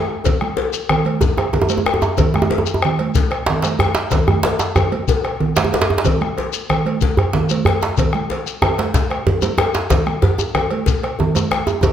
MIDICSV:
0, 0, Header, 1, 5, 480
1, 0, Start_track
1, 0, Tempo, 321716
1, 373, Time_signature, 12, 3, 24, 8
1, 17795, End_track
2, 0, Start_track
2, 0, Title_t, "Bombo"
2, 379, Note_on_c, 9, 43, 97
2, 528, Note_off_c, 9, 43, 0
2, 612, Note_on_c, 9, 37, 77
2, 762, Note_off_c, 9, 37, 0
2, 1102, Note_on_c, 9, 37, 34
2, 1251, Note_off_c, 9, 37, 0
2, 1334, Note_on_c, 9, 37, 100
2, 1483, Note_off_c, 9, 37, 0
2, 1820, Note_on_c, 9, 43, 108
2, 1969, Note_off_c, 9, 43, 0
2, 2061, Note_on_c, 9, 37, 77
2, 2210, Note_off_c, 9, 37, 0
2, 2782, Note_on_c, 9, 37, 115
2, 2931, Note_off_c, 9, 37, 0
2, 3258, Note_on_c, 9, 43, 116
2, 3407, Note_off_c, 9, 43, 0
2, 3515, Note_on_c, 9, 37, 87
2, 3664, Note_off_c, 9, 37, 0
2, 3985, Note_on_c, 9, 37, 36
2, 4134, Note_off_c, 9, 37, 0
2, 4214, Note_on_c, 9, 37, 104
2, 4363, Note_off_c, 9, 37, 0
2, 4705, Note_on_c, 9, 43, 112
2, 4855, Note_off_c, 9, 43, 0
2, 4947, Note_on_c, 9, 37, 85
2, 5097, Note_off_c, 9, 37, 0
2, 5668, Note_on_c, 9, 37, 110
2, 5817, Note_off_c, 9, 37, 0
2, 6147, Note_on_c, 9, 37, 34
2, 6147, Note_on_c, 9, 43, 105
2, 6296, Note_off_c, 9, 37, 0
2, 6296, Note_off_c, 9, 43, 0
2, 6383, Note_on_c, 9, 37, 85
2, 6532, Note_off_c, 9, 37, 0
2, 6631, Note_on_c, 9, 37, 32
2, 6780, Note_off_c, 9, 37, 0
2, 6868, Note_on_c, 9, 37, 33
2, 7018, Note_off_c, 9, 37, 0
2, 7100, Note_on_c, 9, 37, 97
2, 7249, Note_off_c, 9, 37, 0
2, 7576, Note_on_c, 9, 43, 93
2, 7725, Note_off_c, 9, 43, 0
2, 7828, Note_on_c, 9, 37, 73
2, 7977, Note_off_c, 9, 37, 0
2, 8803, Note_on_c, 9, 37, 27
2, 8952, Note_off_c, 9, 37, 0
2, 9045, Note_on_c, 9, 43, 85
2, 9194, Note_off_c, 9, 43, 0
2, 9278, Note_on_c, 9, 37, 67
2, 9427, Note_off_c, 9, 37, 0
2, 9766, Note_on_c, 9, 37, 28
2, 9915, Note_off_c, 9, 37, 0
2, 9996, Note_on_c, 9, 37, 84
2, 10145, Note_off_c, 9, 37, 0
2, 10477, Note_on_c, 9, 43, 96
2, 10626, Note_off_c, 9, 43, 0
2, 10721, Note_on_c, 9, 37, 69
2, 10870, Note_off_c, 9, 37, 0
2, 11429, Note_on_c, 9, 37, 104
2, 11578, Note_off_c, 9, 37, 0
2, 11906, Note_on_c, 9, 43, 98
2, 12055, Note_off_c, 9, 43, 0
2, 12128, Note_on_c, 9, 37, 80
2, 12278, Note_off_c, 9, 37, 0
2, 12623, Note_on_c, 9, 37, 34
2, 12772, Note_off_c, 9, 37, 0
2, 12865, Note_on_c, 9, 37, 100
2, 13014, Note_off_c, 9, 37, 0
2, 13339, Note_on_c, 9, 43, 104
2, 13489, Note_off_c, 9, 43, 0
2, 13597, Note_on_c, 9, 37, 74
2, 13747, Note_off_c, 9, 37, 0
2, 14299, Note_on_c, 9, 37, 104
2, 14448, Note_off_c, 9, 37, 0
2, 14778, Note_on_c, 9, 43, 100
2, 14927, Note_off_c, 9, 43, 0
2, 15022, Note_on_c, 9, 37, 77
2, 15172, Note_off_c, 9, 37, 0
2, 15515, Note_on_c, 9, 37, 32
2, 15664, Note_off_c, 9, 37, 0
2, 15737, Note_on_c, 9, 37, 89
2, 15886, Note_off_c, 9, 37, 0
2, 16213, Note_on_c, 9, 43, 91
2, 16362, Note_off_c, 9, 43, 0
2, 16473, Note_on_c, 9, 37, 67
2, 16622, Note_off_c, 9, 37, 0
2, 17182, Note_on_c, 9, 37, 88
2, 17331, Note_off_c, 9, 37, 0
2, 17651, Note_on_c, 9, 43, 80
2, 17795, Note_off_c, 9, 43, 0
2, 17795, End_track
3, 0, Start_track
3, 0, Title_t, "Djembe"
3, 363, Note_on_c, 9, 64, 79
3, 513, Note_off_c, 9, 64, 0
3, 848, Note_on_c, 9, 62, 77
3, 848, Note_on_c, 9, 63, 80
3, 997, Note_off_c, 9, 62, 0
3, 997, Note_off_c, 9, 63, 0
3, 1085, Note_on_c, 9, 62, 26
3, 1234, Note_off_c, 9, 62, 0
3, 1333, Note_on_c, 9, 64, 74
3, 1482, Note_off_c, 9, 64, 0
3, 1801, Note_on_c, 9, 63, 92
3, 1810, Note_off_c, 9, 63, 0
3, 1810, Note_on_c, 9, 62, 77
3, 1810, Note_on_c, 9, 63, 78
3, 1959, Note_off_c, 9, 62, 0
3, 1959, Note_off_c, 9, 63, 0
3, 2052, Note_on_c, 9, 63, 84
3, 2201, Note_off_c, 9, 63, 0
3, 2285, Note_on_c, 9, 63, 77
3, 2296, Note_on_c, 9, 64, 76
3, 2410, Note_off_c, 9, 63, 0
3, 2410, Note_on_c, 9, 63, 104
3, 2445, Note_off_c, 9, 64, 0
3, 2540, Note_on_c, 9, 62, 25
3, 2559, Note_off_c, 9, 63, 0
3, 2649, Note_on_c, 9, 63, 72
3, 2690, Note_off_c, 9, 62, 0
3, 2778, Note_off_c, 9, 63, 0
3, 2778, Note_on_c, 9, 62, 76
3, 2778, Note_on_c, 9, 63, 75
3, 2890, Note_off_c, 9, 63, 0
3, 2890, Note_on_c, 9, 63, 83
3, 2927, Note_off_c, 9, 62, 0
3, 3014, Note_off_c, 9, 63, 0
3, 3014, Note_on_c, 9, 63, 109
3, 3163, Note_off_c, 9, 63, 0
3, 3250, Note_on_c, 9, 63, 78
3, 3256, Note_on_c, 9, 64, 73
3, 3399, Note_off_c, 9, 63, 0
3, 3406, Note_off_c, 9, 64, 0
3, 3491, Note_on_c, 9, 63, 82
3, 3609, Note_off_c, 9, 63, 0
3, 3609, Note_on_c, 9, 63, 102
3, 3741, Note_off_c, 9, 63, 0
3, 3741, Note_on_c, 9, 62, 82
3, 3741, Note_on_c, 9, 63, 79
3, 3852, Note_off_c, 9, 63, 0
3, 3852, Note_on_c, 9, 63, 81
3, 3890, Note_off_c, 9, 62, 0
3, 3990, Note_on_c, 9, 62, 25
3, 4001, Note_off_c, 9, 63, 0
3, 4093, Note_on_c, 9, 63, 77
3, 4139, Note_off_c, 9, 62, 0
3, 4242, Note_off_c, 9, 63, 0
3, 4707, Note_on_c, 9, 62, 82
3, 4707, Note_on_c, 9, 63, 81
3, 4857, Note_off_c, 9, 62, 0
3, 4857, Note_off_c, 9, 63, 0
3, 5168, Note_on_c, 9, 62, 106
3, 5189, Note_on_c, 9, 64, 74
3, 5318, Note_off_c, 9, 62, 0
3, 5338, Note_off_c, 9, 64, 0
3, 5407, Note_on_c, 9, 62, 78
3, 5435, Note_off_c, 9, 62, 0
3, 5435, Note_on_c, 9, 62, 26
3, 5584, Note_off_c, 9, 62, 0
3, 5657, Note_on_c, 9, 64, 82
3, 5675, Note_on_c, 9, 62, 77
3, 5675, Note_on_c, 9, 63, 74
3, 5807, Note_off_c, 9, 64, 0
3, 5824, Note_off_c, 9, 62, 0
3, 5824, Note_off_c, 9, 63, 0
3, 5888, Note_on_c, 9, 62, 110
3, 6037, Note_off_c, 9, 62, 0
3, 6140, Note_on_c, 9, 62, 76
3, 6154, Note_on_c, 9, 64, 80
3, 6289, Note_off_c, 9, 62, 0
3, 6303, Note_off_c, 9, 64, 0
3, 6382, Note_on_c, 9, 64, 86
3, 6531, Note_off_c, 9, 64, 0
3, 6612, Note_on_c, 9, 62, 107
3, 6636, Note_off_c, 9, 62, 0
3, 6636, Note_on_c, 9, 62, 78
3, 6636, Note_on_c, 9, 63, 79
3, 6785, Note_off_c, 9, 62, 0
3, 6785, Note_off_c, 9, 63, 0
3, 6854, Note_on_c, 9, 62, 75
3, 7004, Note_off_c, 9, 62, 0
3, 7097, Note_on_c, 9, 64, 80
3, 7114, Note_off_c, 9, 64, 0
3, 7114, Note_on_c, 9, 64, 80
3, 7264, Note_off_c, 9, 64, 0
3, 7594, Note_on_c, 9, 62, 79
3, 7594, Note_on_c, 9, 63, 78
3, 7743, Note_off_c, 9, 62, 0
3, 7743, Note_off_c, 9, 63, 0
3, 8071, Note_on_c, 9, 62, 25
3, 8071, Note_on_c, 9, 64, 77
3, 8220, Note_off_c, 9, 62, 0
3, 8220, Note_off_c, 9, 64, 0
3, 8304, Note_on_c, 9, 62, 108
3, 8422, Note_on_c, 9, 63, 78
3, 8453, Note_off_c, 9, 62, 0
3, 8561, Note_on_c, 9, 62, 82
3, 8563, Note_off_c, 9, 62, 0
3, 8563, Note_off_c, 9, 63, 0
3, 8563, Note_on_c, 9, 62, 78
3, 8563, Note_on_c, 9, 63, 75
3, 8676, Note_off_c, 9, 62, 0
3, 8676, Note_on_c, 9, 62, 101
3, 8712, Note_off_c, 9, 63, 0
3, 8804, Note_on_c, 9, 63, 82
3, 8825, Note_off_c, 9, 62, 0
3, 8923, Note_on_c, 9, 62, 81
3, 8954, Note_off_c, 9, 63, 0
3, 9034, Note_on_c, 9, 64, 75
3, 9072, Note_off_c, 9, 62, 0
3, 9183, Note_off_c, 9, 64, 0
3, 9524, Note_on_c, 9, 62, 76
3, 9524, Note_on_c, 9, 63, 79
3, 9673, Note_off_c, 9, 62, 0
3, 9673, Note_off_c, 9, 63, 0
3, 9753, Note_on_c, 9, 62, 24
3, 9902, Note_off_c, 9, 62, 0
3, 9994, Note_on_c, 9, 64, 76
3, 10143, Note_off_c, 9, 64, 0
3, 10476, Note_on_c, 9, 62, 76
3, 10476, Note_on_c, 9, 63, 73
3, 10625, Note_off_c, 9, 62, 0
3, 10625, Note_off_c, 9, 63, 0
3, 10702, Note_on_c, 9, 64, 81
3, 10851, Note_off_c, 9, 64, 0
3, 10941, Note_on_c, 9, 62, 75
3, 10959, Note_on_c, 9, 64, 72
3, 11090, Note_off_c, 9, 62, 0
3, 11108, Note_off_c, 9, 64, 0
3, 11207, Note_on_c, 9, 62, 23
3, 11356, Note_off_c, 9, 62, 0
3, 11416, Note_on_c, 9, 64, 78
3, 11445, Note_on_c, 9, 62, 68
3, 11445, Note_on_c, 9, 63, 74
3, 11565, Note_off_c, 9, 64, 0
3, 11595, Note_off_c, 9, 62, 0
3, 11595, Note_off_c, 9, 63, 0
3, 11676, Note_on_c, 9, 62, 79
3, 11825, Note_off_c, 9, 62, 0
3, 11912, Note_on_c, 9, 64, 74
3, 12061, Note_off_c, 9, 64, 0
3, 12382, Note_on_c, 9, 62, 76
3, 12382, Note_on_c, 9, 63, 75
3, 12531, Note_off_c, 9, 62, 0
3, 12531, Note_off_c, 9, 63, 0
3, 12633, Note_on_c, 9, 62, 24
3, 12782, Note_off_c, 9, 62, 0
3, 12860, Note_on_c, 9, 63, 101
3, 12872, Note_on_c, 9, 64, 77
3, 13009, Note_off_c, 9, 63, 0
3, 13021, Note_off_c, 9, 64, 0
3, 13115, Note_on_c, 9, 62, 77
3, 13265, Note_off_c, 9, 62, 0
3, 13342, Note_on_c, 9, 62, 74
3, 13344, Note_off_c, 9, 62, 0
3, 13344, Note_on_c, 9, 62, 77
3, 13344, Note_on_c, 9, 63, 82
3, 13493, Note_off_c, 9, 62, 0
3, 13493, Note_off_c, 9, 63, 0
3, 13826, Note_on_c, 9, 64, 80
3, 13830, Note_off_c, 9, 64, 0
3, 13830, Note_on_c, 9, 64, 79
3, 13979, Note_off_c, 9, 64, 0
3, 14058, Note_on_c, 9, 63, 84
3, 14208, Note_off_c, 9, 63, 0
3, 14289, Note_on_c, 9, 63, 101
3, 14299, Note_off_c, 9, 63, 0
3, 14299, Note_on_c, 9, 62, 80
3, 14299, Note_on_c, 9, 63, 78
3, 14448, Note_off_c, 9, 62, 0
3, 14448, Note_off_c, 9, 63, 0
3, 14543, Note_on_c, 9, 62, 84
3, 14692, Note_off_c, 9, 62, 0
3, 14773, Note_on_c, 9, 64, 85
3, 14775, Note_on_c, 9, 62, 84
3, 14922, Note_off_c, 9, 64, 0
3, 14924, Note_off_c, 9, 62, 0
3, 15250, Note_on_c, 9, 62, 80
3, 15250, Note_on_c, 9, 63, 81
3, 15259, Note_on_c, 9, 64, 82
3, 15400, Note_off_c, 9, 62, 0
3, 15400, Note_off_c, 9, 63, 0
3, 15408, Note_off_c, 9, 64, 0
3, 15493, Note_on_c, 9, 62, 25
3, 15493, Note_on_c, 9, 63, 79
3, 15642, Note_off_c, 9, 62, 0
3, 15642, Note_off_c, 9, 63, 0
3, 15736, Note_on_c, 9, 64, 80
3, 15885, Note_off_c, 9, 64, 0
3, 16206, Note_on_c, 9, 62, 81
3, 16206, Note_on_c, 9, 63, 78
3, 16355, Note_off_c, 9, 62, 0
3, 16355, Note_off_c, 9, 63, 0
3, 16692, Note_on_c, 9, 64, 70
3, 16706, Note_on_c, 9, 63, 76
3, 16842, Note_off_c, 9, 64, 0
3, 16855, Note_off_c, 9, 63, 0
3, 16950, Note_on_c, 9, 63, 84
3, 17099, Note_off_c, 9, 63, 0
3, 17179, Note_on_c, 9, 62, 71
3, 17179, Note_on_c, 9, 63, 77
3, 17328, Note_off_c, 9, 62, 0
3, 17328, Note_off_c, 9, 63, 0
3, 17410, Note_on_c, 9, 63, 83
3, 17559, Note_off_c, 9, 63, 0
3, 17657, Note_on_c, 9, 63, 103
3, 17662, Note_on_c, 9, 64, 77
3, 17795, Note_off_c, 9, 63, 0
3, 17795, Note_off_c, 9, 64, 0
3, 17795, End_track
4, 0, Start_track
4, 0, Title_t, "Shekere"
4, 377, Note_on_c, 9, 82, 61
4, 526, Note_off_c, 9, 82, 0
4, 1091, Note_on_c, 9, 82, 47
4, 1240, Note_off_c, 9, 82, 0
4, 1812, Note_on_c, 9, 82, 63
4, 1961, Note_off_c, 9, 82, 0
4, 2522, Note_on_c, 9, 82, 51
4, 2672, Note_off_c, 9, 82, 0
4, 3008, Note_on_c, 9, 82, 21
4, 3158, Note_off_c, 9, 82, 0
4, 3243, Note_on_c, 9, 82, 69
4, 3393, Note_off_c, 9, 82, 0
4, 3970, Note_on_c, 9, 82, 49
4, 4120, Note_off_c, 9, 82, 0
4, 4695, Note_on_c, 9, 82, 60
4, 4844, Note_off_c, 9, 82, 0
4, 5425, Note_on_c, 9, 82, 50
4, 5574, Note_off_c, 9, 82, 0
4, 5904, Note_on_c, 9, 82, 19
4, 6053, Note_off_c, 9, 82, 0
4, 6129, Note_on_c, 9, 82, 55
4, 6278, Note_off_c, 9, 82, 0
4, 6856, Note_on_c, 9, 82, 44
4, 7005, Note_off_c, 9, 82, 0
4, 7099, Note_on_c, 9, 82, 18
4, 7249, Note_off_c, 9, 82, 0
4, 7578, Note_on_c, 9, 82, 58
4, 7727, Note_off_c, 9, 82, 0
4, 8296, Note_on_c, 9, 82, 44
4, 8445, Note_off_c, 9, 82, 0
4, 9022, Note_on_c, 9, 82, 59
4, 9171, Note_off_c, 9, 82, 0
4, 9740, Note_on_c, 9, 82, 47
4, 9889, Note_off_c, 9, 82, 0
4, 10459, Note_on_c, 9, 82, 55
4, 10608, Note_off_c, 9, 82, 0
4, 11179, Note_on_c, 9, 82, 49
4, 11328, Note_off_c, 9, 82, 0
4, 11665, Note_on_c, 9, 82, 19
4, 11814, Note_off_c, 9, 82, 0
4, 11896, Note_on_c, 9, 82, 58
4, 12046, Note_off_c, 9, 82, 0
4, 12634, Note_on_c, 9, 82, 45
4, 12783, Note_off_c, 9, 82, 0
4, 13350, Note_on_c, 9, 82, 57
4, 13500, Note_off_c, 9, 82, 0
4, 14053, Note_on_c, 9, 82, 49
4, 14203, Note_off_c, 9, 82, 0
4, 14535, Note_on_c, 9, 82, 20
4, 14685, Note_off_c, 9, 82, 0
4, 14776, Note_on_c, 9, 82, 63
4, 14925, Note_off_c, 9, 82, 0
4, 15503, Note_on_c, 9, 82, 50
4, 15652, Note_off_c, 9, 82, 0
4, 16225, Note_on_c, 9, 82, 66
4, 16374, Note_off_c, 9, 82, 0
4, 16948, Note_on_c, 9, 82, 52
4, 17098, Note_off_c, 9, 82, 0
4, 17416, Note_on_c, 9, 82, 22
4, 17565, Note_off_c, 9, 82, 0
4, 17646, Note_on_c, 9, 82, 63
4, 17795, Note_off_c, 9, 82, 0
4, 17795, End_track
5, 0, Start_track
5, 0, Title_t, "Drums"
5, 379, Note_on_c, 9, 56, 65
5, 392, Note_on_c, 9, 64, 70
5, 528, Note_off_c, 9, 56, 0
5, 541, Note_off_c, 9, 64, 0
5, 623, Note_on_c, 9, 63, 54
5, 772, Note_off_c, 9, 63, 0
5, 854, Note_on_c, 9, 56, 47
5, 1003, Note_off_c, 9, 56, 0
5, 1337, Note_on_c, 9, 56, 52
5, 1341, Note_on_c, 9, 64, 74
5, 1486, Note_off_c, 9, 56, 0
5, 1491, Note_off_c, 9, 64, 0
5, 1567, Note_on_c, 9, 63, 52
5, 1582, Note_on_c, 9, 56, 49
5, 1717, Note_off_c, 9, 63, 0
5, 1731, Note_off_c, 9, 56, 0
5, 2046, Note_on_c, 9, 63, 23
5, 2063, Note_on_c, 9, 56, 52
5, 2195, Note_off_c, 9, 63, 0
5, 2213, Note_off_c, 9, 56, 0
5, 2293, Note_on_c, 9, 64, 72
5, 2442, Note_off_c, 9, 64, 0
5, 2525, Note_on_c, 9, 63, 53
5, 2536, Note_on_c, 9, 56, 51
5, 2674, Note_off_c, 9, 63, 0
5, 2685, Note_off_c, 9, 56, 0
5, 2773, Note_on_c, 9, 56, 49
5, 2923, Note_off_c, 9, 56, 0
5, 3254, Note_on_c, 9, 56, 68
5, 3265, Note_on_c, 9, 64, 69
5, 3404, Note_off_c, 9, 56, 0
5, 3414, Note_off_c, 9, 64, 0
5, 3511, Note_on_c, 9, 63, 53
5, 3660, Note_off_c, 9, 63, 0
5, 3734, Note_on_c, 9, 56, 53
5, 3883, Note_off_c, 9, 56, 0
5, 4210, Note_on_c, 9, 56, 54
5, 4247, Note_on_c, 9, 64, 73
5, 4359, Note_off_c, 9, 56, 0
5, 4396, Note_off_c, 9, 64, 0
5, 4462, Note_on_c, 9, 56, 56
5, 4480, Note_on_c, 9, 63, 55
5, 4611, Note_off_c, 9, 56, 0
5, 4629, Note_off_c, 9, 63, 0
5, 4936, Note_on_c, 9, 56, 52
5, 4973, Note_on_c, 9, 63, 23
5, 5085, Note_off_c, 9, 56, 0
5, 5122, Note_off_c, 9, 63, 0
5, 5216, Note_on_c, 9, 64, 74
5, 5365, Note_off_c, 9, 64, 0
5, 5425, Note_on_c, 9, 56, 51
5, 5450, Note_on_c, 9, 63, 50
5, 5574, Note_off_c, 9, 56, 0
5, 5600, Note_off_c, 9, 63, 0
5, 5669, Note_on_c, 9, 56, 48
5, 5818, Note_off_c, 9, 56, 0
5, 6142, Note_on_c, 9, 56, 61
5, 6168, Note_on_c, 9, 64, 65
5, 6291, Note_off_c, 9, 56, 0
5, 6317, Note_off_c, 9, 64, 0
5, 6388, Note_on_c, 9, 63, 53
5, 6537, Note_off_c, 9, 63, 0
5, 6624, Note_on_c, 9, 56, 47
5, 6773, Note_off_c, 9, 56, 0
5, 6864, Note_on_c, 9, 63, 22
5, 7013, Note_off_c, 9, 63, 0
5, 7104, Note_on_c, 9, 63, 23
5, 7104, Note_on_c, 9, 64, 74
5, 7105, Note_on_c, 9, 56, 54
5, 7253, Note_off_c, 9, 63, 0
5, 7253, Note_off_c, 9, 64, 0
5, 7255, Note_off_c, 9, 56, 0
5, 7341, Note_on_c, 9, 63, 51
5, 7344, Note_on_c, 9, 56, 53
5, 7491, Note_off_c, 9, 63, 0
5, 7493, Note_off_c, 9, 56, 0
5, 7584, Note_on_c, 9, 63, 22
5, 7733, Note_off_c, 9, 63, 0
5, 7823, Note_on_c, 9, 56, 50
5, 7972, Note_off_c, 9, 56, 0
5, 8062, Note_on_c, 9, 64, 68
5, 8211, Note_off_c, 9, 64, 0
5, 8301, Note_on_c, 9, 56, 53
5, 8314, Note_on_c, 9, 63, 52
5, 8450, Note_off_c, 9, 56, 0
5, 8464, Note_off_c, 9, 63, 0
5, 8549, Note_on_c, 9, 56, 50
5, 8698, Note_off_c, 9, 56, 0
5, 8793, Note_on_c, 9, 63, 23
5, 8942, Note_off_c, 9, 63, 0
5, 9021, Note_on_c, 9, 64, 69
5, 9034, Note_on_c, 9, 56, 67
5, 9170, Note_off_c, 9, 64, 0
5, 9183, Note_off_c, 9, 56, 0
5, 9269, Note_on_c, 9, 63, 55
5, 9418, Note_off_c, 9, 63, 0
5, 9513, Note_on_c, 9, 56, 52
5, 9662, Note_off_c, 9, 56, 0
5, 9989, Note_on_c, 9, 64, 74
5, 9997, Note_on_c, 9, 56, 54
5, 10139, Note_off_c, 9, 64, 0
5, 10146, Note_off_c, 9, 56, 0
5, 10232, Note_on_c, 9, 63, 52
5, 10242, Note_on_c, 9, 56, 55
5, 10381, Note_off_c, 9, 63, 0
5, 10391, Note_off_c, 9, 56, 0
5, 10721, Note_on_c, 9, 56, 51
5, 10870, Note_off_c, 9, 56, 0
5, 10945, Note_on_c, 9, 64, 71
5, 11094, Note_off_c, 9, 64, 0
5, 11203, Note_on_c, 9, 63, 53
5, 11206, Note_on_c, 9, 56, 54
5, 11352, Note_off_c, 9, 63, 0
5, 11355, Note_off_c, 9, 56, 0
5, 11452, Note_on_c, 9, 56, 51
5, 11601, Note_off_c, 9, 56, 0
5, 11911, Note_on_c, 9, 64, 71
5, 11925, Note_on_c, 9, 56, 69
5, 12060, Note_off_c, 9, 64, 0
5, 12074, Note_off_c, 9, 56, 0
5, 12153, Note_on_c, 9, 63, 57
5, 12303, Note_off_c, 9, 63, 0
5, 12405, Note_on_c, 9, 56, 52
5, 12554, Note_off_c, 9, 56, 0
5, 12865, Note_on_c, 9, 64, 74
5, 12878, Note_on_c, 9, 56, 53
5, 13014, Note_off_c, 9, 64, 0
5, 13027, Note_off_c, 9, 56, 0
5, 13104, Note_on_c, 9, 56, 52
5, 13107, Note_on_c, 9, 63, 51
5, 13253, Note_off_c, 9, 56, 0
5, 13256, Note_off_c, 9, 63, 0
5, 13583, Note_on_c, 9, 56, 51
5, 13595, Note_on_c, 9, 63, 22
5, 13733, Note_off_c, 9, 56, 0
5, 13744, Note_off_c, 9, 63, 0
5, 13826, Note_on_c, 9, 64, 73
5, 13975, Note_off_c, 9, 64, 0
5, 14059, Note_on_c, 9, 56, 56
5, 14068, Note_on_c, 9, 63, 52
5, 14208, Note_off_c, 9, 56, 0
5, 14217, Note_off_c, 9, 63, 0
5, 14298, Note_on_c, 9, 56, 49
5, 14447, Note_off_c, 9, 56, 0
5, 14770, Note_on_c, 9, 64, 64
5, 14787, Note_on_c, 9, 56, 65
5, 14919, Note_off_c, 9, 64, 0
5, 14936, Note_off_c, 9, 56, 0
5, 15017, Note_on_c, 9, 63, 53
5, 15166, Note_off_c, 9, 63, 0
5, 15254, Note_on_c, 9, 56, 51
5, 15403, Note_off_c, 9, 56, 0
5, 15739, Note_on_c, 9, 64, 76
5, 15741, Note_on_c, 9, 56, 51
5, 15888, Note_off_c, 9, 64, 0
5, 15890, Note_off_c, 9, 56, 0
5, 15973, Note_on_c, 9, 56, 55
5, 15986, Note_on_c, 9, 63, 54
5, 16122, Note_off_c, 9, 56, 0
5, 16135, Note_off_c, 9, 63, 0
5, 16460, Note_on_c, 9, 63, 23
5, 16463, Note_on_c, 9, 56, 55
5, 16609, Note_off_c, 9, 63, 0
5, 16613, Note_off_c, 9, 56, 0
5, 16711, Note_on_c, 9, 64, 76
5, 16860, Note_off_c, 9, 64, 0
5, 16932, Note_on_c, 9, 63, 59
5, 16934, Note_on_c, 9, 56, 50
5, 17081, Note_off_c, 9, 63, 0
5, 17083, Note_off_c, 9, 56, 0
5, 17173, Note_on_c, 9, 56, 52
5, 17322, Note_off_c, 9, 56, 0
5, 17649, Note_on_c, 9, 64, 75
5, 17652, Note_on_c, 9, 56, 68
5, 17795, Note_off_c, 9, 56, 0
5, 17795, Note_off_c, 9, 64, 0
5, 17795, End_track
0, 0, End_of_file